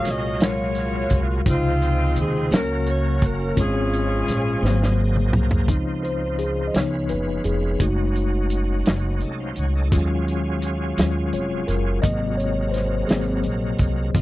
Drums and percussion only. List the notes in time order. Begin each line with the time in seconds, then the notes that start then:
0.05 snare, closed hi-hat
0.40 snare, closed hi-hat
0.75 closed hi-hat
1.10 kick, closed hi-hat
1.46 kick, closed hi-hat
1.82 closed hi-hat
2.16 closed hi-hat
2.52 snare, closed hi-hat
2.86 closed hi-hat
3.22 kick, closed hi-hat
3.57 kick, closed hi-hat
3.93 closed hi-hat
4.28 snare, closed hi-hat
4.65 snare
4.83 snare
5.16 mid tom
5.33 mid tom
5.51 floor tom
5.68 kick, closed hi-hat
6.04 closed hi-hat
6.38 closed hi-hat
6.74 snare, closed hi-hat
7.09 closed hi-hat
7.44 closed hi-hat
7.80 kick, closed hi-hat
8.15 closed hi-hat
8.50 closed hi-hat
8.85 snare, closed hi-hat
9.20 closed hi-hat
9.56 closed hi-hat
9.92 kick, closed hi-hat
10.28 closed hi-hat
10.62 closed hi-hat
10.98 snare, closed hi-hat
11.33 closed hi-hat
11.68 closed hi-hat
12.04 kick, closed hi-hat
12.40 closed hi-hat
12.74 snare, closed hi-hat
13.09 snare, closed hi-hat
13.43 closed hi-hat
13.78 kick, closed hi-hat
14.14 kick, closed hi-hat